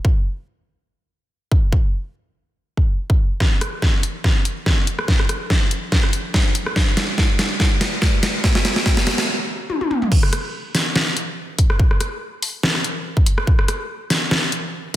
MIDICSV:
0, 0, Header, 1, 2, 480
1, 0, Start_track
1, 0, Tempo, 419580
1, 54, Time_signature, 4, 2, 24, 8
1, 17115, End_track
2, 0, Start_track
2, 0, Title_t, "Drums"
2, 53, Note_on_c, 9, 36, 113
2, 168, Note_off_c, 9, 36, 0
2, 1733, Note_on_c, 9, 36, 107
2, 1848, Note_off_c, 9, 36, 0
2, 1973, Note_on_c, 9, 36, 110
2, 2088, Note_off_c, 9, 36, 0
2, 3173, Note_on_c, 9, 36, 59
2, 3288, Note_off_c, 9, 36, 0
2, 3543, Note_on_c, 9, 36, 103
2, 3658, Note_off_c, 9, 36, 0
2, 3893, Note_on_c, 9, 36, 92
2, 3894, Note_on_c, 9, 38, 47
2, 4008, Note_off_c, 9, 36, 0
2, 4008, Note_off_c, 9, 38, 0
2, 4134, Note_on_c, 9, 37, 74
2, 4134, Note_on_c, 9, 42, 80
2, 4248, Note_off_c, 9, 37, 0
2, 4248, Note_off_c, 9, 42, 0
2, 4373, Note_on_c, 9, 36, 100
2, 4374, Note_on_c, 9, 38, 50
2, 4488, Note_off_c, 9, 36, 0
2, 4488, Note_off_c, 9, 38, 0
2, 4614, Note_on_c, 9, 42, 81
2, 4728, Note_off_c, 9, 42, 0
2, 4853, Note_on_c, 9, 36, 99
2, 4854, Note_on_c, 9, 38, 50
2, 4968, Note_off_c, 9, 36, 0
2, 4968, Note_off_c, 9, 38, 0
2, 5094, Note_on_c, 9, 42, 81
2, 5208, Note_off_c, 9, 42, 0
2, 5333, Note_on_c, 9, 36, 92
2, 5334, Note_on_c, 9, 38, 57
2, 5448, Note_off_c, 9, 36, 0
2, 5449, Note_off_c, 9, 38, 0
2, 5574, Note_on_c, 9, 42, 80
2, 5689, Note_off_c, 9, 42, 0
2, 5704, Note_on_c, 9, 37, 78
2, 5813, Note_on_c, 9, 36, 97
2, 5814, Note_on_c, 9, 38, 55
2, 5819, Note_off_c, 9, 37, 0
2, 5928, Note_off_c, 9, 36, 0
2, 5929, Note_off_c, 9, 38, 0
2, 5944, Note_on_c, 9, 37, 58
2, 6054, Note_off_c, 9, 37, 0
2, 6054, Note_on_c, 9, 37, 75
2, 6054, Note_on_c, 9, 42, 82
2, 6169, Note_off_c, 9, 37, 0
2, 6169, Note_off_c, 9, 42, 0
2, 6293, Note_on_c, 9, 36, 99
2, 6294, Note_on_c, 9, 38, 63
2, 6408, Note_off_c, 9, 36, 0
2, 6408, Note_off_c, 9, 38, 0
2, 6534, Note_on_c, 9, 42, 82
2, 6648, Note_off_c, 9, 42, 0
2, 6773, Note_on_c, 9, 36, 102
2, 6774, Note_on_c, 9, 38, 65
2, 6888, Note_off_c, 9, 36, 0
2, 6888, Note_off_c, 9, 38, 0
2, 6904, Note_on_c, 9, 37, 51
2, 7013, Note_on_c, 9, 42, 81
2, 7018, Note_off_c, 9, 37, 0
2, 7128, Note_off_c, 9, 42, 0
2, 7253, Note_on_c, 9, 36, 97
2, 7254, Note_on_c, 9, 38, 70
2, 7368, Note_off_c, 9, 36, 0
2, 7368, Note_off_c, 9, 38, 0
2, 7494, Note_on_c, 9, 42, 85
2, 7608, Note_off_c, 9, 42, 0
2, 7624, Note_on_c, 9, 37, 77
2, 7733, Note_on_c, 9, 36, 93
2, 7734, Note_on_c, 9, 38, 72
2, 7738, Note_off_c, 9, 37, 0
2, 7848, Note_off_c, 9, 36, 0
2, 7848, Note_off_c, 9, 38, 0
2, 7973, Note_on_c, 9, 38, 80
2, 7973, Note_on_c, 9, 42, 81
2, 8088, Note_off_c, 9, 38, 0
2, 8088, Note_off_c, 9, 42, 0
2, 8213, Note_on_c, 9, 36, 99
2, 8213, Note_on_c, 9, 38, 81
2, 8328, Note_off_c, 9, 36, 0
2, 8328, Note_off_c, 9, 38, 0
2, 8453, Note_on_c, 9, 38, 82
2, 8453, Note_on_c, 9, 42, 79
2, 8568, Note_off_c, 9, 38, 0
2, 8568, Note_off_c, 9, 42, 0
2, 8693, Note_on_c, 9, 36, 97
2, 8693, Note_on_c, 9, 38, 83
2, 8808, Note_off_c, 9, 36, 0
2, 8808, Note_off_c, 9, 38, 0
2, 8933, Note_on_c, 9, 38, 85
2, 8933, Note_on_c, 9, 42, 83
2, 9048, Note_off_c, 9, 38, 0
2, 9048, Note_off_c, 9, 42, 0
2, 9173, Note_on_c, 9, 36, 96
2, 9173, Note_on_c, 9, 38, 87
2, 9288, Note_off_c, 9, 36, 0
2, 9288, Note_off_c, 9, 38, 0
2, 9413, Note_on_c, 9, 38, 89
2, 9413, Note_on_c, 9, 42, 85
2, 9528, Note_off_c, 9, 38, 0
2, 9528, Note_off_c, 9, 42, 0
2, 9653, Note_on_c, 9, 36, 100
2, 9654, Note_on_c, 9, 38, 92
2, 9768, Note_off_c, 9, 36, 0
2, 9768, Note_off_c, 9, 38, 0
2, 9784, Note_on_c, 9, 38, 86
2, 9894, Note_off_c, 9, 38, 0
2, 9894, Note_on_c, 9, 38, 98
2, 9894, Note_on_c, 9, 42, 79
2, 10008, Note_off_c, 9, 38, 0
2, 10008, Note_off_c, 9, 42, 0
2, 10024, Note_on_c, 9, 38, 85
2, 10133, Note_on_c, 9, 36, 99
2, 10134, Note_off_c, 9, 38, 0
2, 10134, Note_on_c, 9, 38, 99
2, 10248, Note_off_c, 9, 36, 0
2, 10248, Note_off_c, 9, 38, 0
2, 10264, Note_on_c, 9, 38, 85
2, 10374, Note_off_c, 9, 38, 0
2, 10374, Note_on_c, 9, 38, 104
2, 10374, Note_on_c, 9, 42, 81
2, 10488, Note_off_c, 9, 38, 0
2, 10488, Note_off_c, 9, 42, 0
2, 10504, Note_on_c, 9, 38, 91
2, 10504, Note_on_c, 9, 42, 38
2, 10619, Note_off_c, 9, 38, 0
2, 10619, Note_off_c, 9, 42, 0
2, 11093, Note_on_c, 9, 48, 60
2, 11208, Note_off_c, 9, 48, 0
2, 11224, Note_on_c, 9, 48, 66
2, 11333, Note_on_c, 9, 47, 91
2, 11338, Note_off_c, 9, 48, 0
2, 11448, Note_off_c, 9, 47, 0
2, 11463, Note_on_c, 9, 45, 88
2, 11573, Note_on_c, 9, 36, 122
2, 11574, Note_on_c, 9, 49, 109
2, 11578, Note_off_c, 9, 45, 0
2, 11688, Note_off_c, 9, 36, 0
2, 11688, Note_off_c, 9, 49, 0
2, 11704, Note_on_c, 9, 37, 60
2, 11814, Note_off_c, 9, 37, 0
2, 11814, Note_on_c, 9, 37, 78
2, 11814, Note_on_c, 9, 42, 83
2, 11928, Note_off_c, 9, 37, 0
2, 11928, Note_off_c, 9, 42, 0
2, 12294, Note_on_c, 9, 38, 64
2, 12294, Note_on_c, 9, 46, 99
2, 12408, Note_off_c, 9, 38, 0
2, 12408, Note_off_c, 9, 46, 0
2, 12533, Note_on_c, 9, 38, 121
2, 12648, Note_off_c, 9, 38, 0
2, 12773, Note_on_c, 9, 42, 84
2, 12888, Note_off_c, 9, 42, 0
2, 13253, Note_on_c, 9, 36, 113
2, 13253, Note_on_c, 9, 42, 86
2, 13368, Note_off_c, 9, 36, 0
2, 13368, Note_off_c, 9, 42, 0
2, 13384, Note_on_c, 9, 37, 77
2, 13493, Note_on_c, 9, 36, 125
2, 13498, Note_off_c, 9, 37, 0
2, 13608, Note_off_c, 9, 36, 0
2, 13624, Note_on_c, 9, 37, 60
2, 13734, Note_off_c, 9, 37, 0
2, 13734, Note_on_c, 9, 37, 80
2, 13734, Note_on_c, 9, 42, 89
2, 13848, Note_off_c, 9, 37, 0
2, 13848, Note_off_c, 9, 42, 0
2, 14214, Note_on_c, 9, 46, 100
2, 14328, Note_off_c, 9, 46, 0
2, 14454, Note_on_c, 9, 38, 124
2, 14568, Note_off_c, 9, 38, 0
2, 14584, Note_on_c, 9, 37, 52
2, 14694, Note_on_c, 9, 42, 84
2, 14698, Note_off_c, 9, 37, 0
2, 14808, Note_off_c, 9, 42, 0
2, 15064, Note_on_c, 9, 36, 114
2, 15174, Note_on_c, 9, 42, 87
2, 15178, Note_off_c, 9, 36, 0
2, 15289, Note_off_c, 9, 42, 0
2, 15304, Note_on_c, 9, 37, 77
2, 15414, Note_on_c, 9, 36, 127
2, 15418, Note_off_c, 9, 37, 0
2, 15528, Note_off_c, 9, 36, 0
2, 15544, Note_on_c, 9, 37, 66
2, 15654, Note_off_c, 9, 37, 0
2, 15654, Note_on_c, 9, 37, 82
2, 15654, Note_on_c, 9, 42, 85
2, 15769, Note_off_c, 9, 37, 0
2, 15769, Note_off_c, 9, 42, 0
2, 16134, Note_on_c, 9, 38, 70
2, 16134, Note_on_c, 9, 46, 91
2, 16248, Note_off_c, 9, 38, 0
2, 16248, Note_off_c, 9, 46, 0
2, 16374, Note_on_c, 9, 38, 124
2, 16488, Note_off_c, 9, 38, 0
2, 16614, Note_on_c, 9, 42, 83
2, 16728, Note_off_c, 9, 42, 0
2, 17115, End_track
0, 0, End_of_file